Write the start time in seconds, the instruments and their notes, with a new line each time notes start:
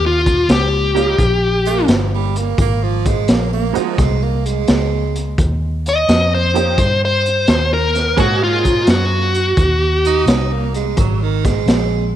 Already playing: fingered electric bass D#2
0.06 lead electric guitar F4
0.26 kick, closed hi-hat
0.49 fingered electric bass C#2, lead electric guitar G4, snare, closed hi-hat
0.95 honky-tonk piano G3 A#3 C#4 D#4 F4, closed hi-hat
1.18 fingered electric bass A#1, kick, closed hi-hat
1.66 tenor saxophone A#3, closed hi-hat
1.88 fingered electric bass G1, tenor saxophone F3, snare, closed hi-hat
2.14 tenor saxophone G3
2.36 tenor saxophone A#3, closed hi-hat
2.58 fingered electric bass G#1, tenor saxophone A#3, kick, closed hi-hat
2.83 tenor saxophone F3
3.06 tenor saxophone G#3, kick, closed hi-hat
3.28 fingered electric bass A#1, tenor saxophone A#3, snare, closed hi-hat
3.53 tenor saxophone A#3
3.73 tenor saxophone F3, honky-tonk piano G#3 A#3 C4 D#4 F#4, muted fingered electric bass stroke, closed hi-hat
3.98 fingered electric bass C2, tenor saxophone G#3, kick, snare, closed hi-hat
4.23 tenor saxophone A#3
4.46 tenor saxophone G#3, closed hi-hat
4.68 fingered electric bass C#2, snare, closed hi-hat
5.16 closed hi-hat
5.38 fingered electric bass D#2, kick, closed hi-hat
5.86 lead electric guitar D#5, closed hi-hat
6.09 fingered electric bass F2, snare, closed hi-hat
6.34 lead electric guitar C5
6.54 honky-tonk piano F3 A#3 C#4 D#4 G4, closed hi-hat
6.78 fingered electric bass G2, kick, closed hi-hat
7.05 lead electric guitar C5
7.26 closed hi-hat
7.47 fingered electric bass D#2, snare, closed hi-hat
7.74 lead electric guitar A#4
7.95 snare, closed hi-hat
8.16 fingered electric bass G#2, honky-tonk piano F#3 A#3 C4 D#4 G#4, lead electric guitar F#4, kick, closed hi-hat
8.43 lead electric guitar F4
8.65 kick, closed hi-hat
8.87 fingered electric bass F#2, lead electric guitar F#4, snare, closed hi-hat
9.35 closed hi-hat
9.57 fingered electric bass D#2, kick, closed hi-hat
10.05 tenor saxophone D#4, closed hi-hat
10.26 fingered electric bass C2, snare, closed hi-hat
10.53 tenor saxophone A#3
10.74 tenor saxophone G#3, closed hi-hat
10.97 fingered electric bass G#1, tenor saxophone F#3, kick, closed hi-hat
11.22 tenor saxophone D#3
11.45 tenor saxophone G#3, kick, snare, closed hi-hat
11.66 fingered electric bass A#1, snare, closed hi-hat